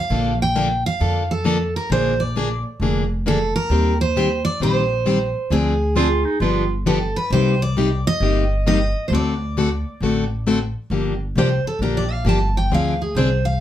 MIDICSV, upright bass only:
0, 0, Header, 1, 3, 480
1, 0, Start_track
1, 0, Key_signature, -2, "minor"
1, 0, Tempo, 450113
1, 112, Time_signature, 4, 2, 24, 8
1, 14506, End_track
2, 0, Start_track
2, 0, Title_t, "Upright bass"
2, 0, Program_c, 0, 32
2, 105, Note_on_c, 0, 34, 86
2, 875, Note_off_c, 0, 34, 0
2, 1072, Note_on_c, 0, 41, 88
2, 1839, Note_off_c, 0, 41, 0
2, 2023, Note_on_c, 0, 34, 86
2, 2794, Note_off_c, 0, 34, 0
2, 2982, Note_on_c, 0, 29, 79
2, 3754, Note_off_c, 0, 29, 0
2, 3940, Note_on_c, 0, 39, 87
2, 4713, Note_off_c, 0, 39, 0
2, 4907, Note_on_c, 0, 34, 73
2, 5678, Note_off_c, 0, 34, 0
2, 5869, Note_on_c, 0, 38, 81
2, 6639, Note_off_c, 0, 38, 0
2, 6826, Note_on_c, 0, 31, 92
2, 7597, Note_off_c, 0, 31, 0
2, 7789, Note_on_c, 0, 36, 92
2, 8559, Note_off_c, 0, 36, 0
2, 8747, Note_on_c, 0, 31, 86
2, 9518, Note_off_c, 0, 31, 0
2, 9702, Note_on_c, 0, 38, 99
2, 10475, Note_off_c, 0, 38, 0
2, 10669, Note_on_c, 0, 33, 77
2, 11439, Note_off_c, 0, 33, 0
2, 11624, Note_on_c, 0, 31, 80
2, 12094, Note_off_c, 0, 31, 0
2, 12109, Note_on_c, 0, 36, 85
2, 12397, Note_off_c, 0, 36, 0
2, 12573, Note_on_c, 0, 34, 79
2, 13049, Note_off_c, 0, 34, 0
2, 13059, Note_on_c, 0, 31, 95
2, 13532, Note_off_c, 0, 31, 0
2, 13543, Note_on_c, 0, 38, 78
2, 14015, Note_off_c, 0, 38, 0
2, 14021, Note_on_c, 0, 36, 85
2, 14494, Note_off_c, 0, 36, 0
2, 14506, End_track
3, 0, Start_track
3, 0, Title_t, "Muted upright bass strokes"
3, 12417, Note_on_c, 9, 29, 39
3, 12523, Note_off_c, 9, 29, 0
3, 14506, End_track
0, 0, End_of_file